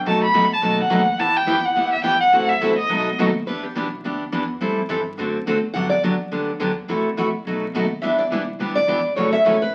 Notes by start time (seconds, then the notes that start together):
0.05 B1 B2 F#3 A3 D#4 F#4 B4 A5
0.24 B5
0.33 E2 B2 F#3 A3 D#4 F#4 B4
0.50 A5, muted upright bass stroke
0.62 D#2 B2 F#3 A3 D#4 F#4 B4
0.81 F#5
0.90 D#2 B2 F#3 A3 D#4 F#4 B4
1.18 E2 E3 B3 E4 G4 B4 A5
1.36 G5
1.47 F#2 E3 B3 E4 G4 B4
1.64 F#5, muted upright bass stroke
1.75 E2 E3 B3 E4 G4 B4
1.93 E5
2.03 G2 E3 B3 E4 G4 B4 G5
2.21 F#5
2.32 F#2 C3 E3 F#3 A3 C4 E4 F#4 A4
2.49 E5
2.61 E2 C3 E3 F#3 A3 C4 E4 F#4 A4
2.78 D#5
2.89 B1 B2 F#3 A3 D#4 F#4 B4
3.18 D#2 B2 F#3 A3 D#4 F#4 B4
3.46 E2 E3 B3 D4 G4 B4
3.63 G4
3.75 B1 E3 B3 D4 G4
4.04 D2 E3 B3 D4 G4
4.32 E2 E3 B3 D4 G4
4.60 A2 E3 G3 C4 E4 A4
4.89 G2 E3 G3 C4 E4 A4
5.17 F#2 D3 A3 C4 F#4 A4
5.46 E2 D3 A3 C4 F#4 A4
5.74 G2 D3 F#3 B3 D4 G4 F#5
5.90 D5
6.03 F#2 D3 F#3 B3 D4 G4
6.20 muted upright bass stroke
6.31 D2 D3 F#3 B3 D4 G4
6.59 E2 D3 F#3 B3 D4 G4
6.88 F#2 C3 E3 A3 E4 F#4
7.16 E2 C3 E3 A3 E4 F#4
7.33 muted upright bass stroke
7.45 B1 B2 F#3 A3 D#4 F#4
7.73 D#2 B2 F#3 A3 D#4 F#4
8.02 E2 E3 G3 B3 D4 E4 G4 B4 E5
8.18 D5
8.30 C2 E3 G3 B3 D4 E4 G4 B4
8.59 D2 E3 G3 B3 D4 E4 G4 B4
8.75 D5
8.87 E2 E3 G3 B3 D4 E4 G4 B4
9.15 F#2 C#3 E3 F#3 A3 C#4 E4 F#4 A4 C#5
9.33 E5
9.44 A2 C#3 E3 F#3 A3 C#4 E4 F#4 A4 C#5
9.62 B4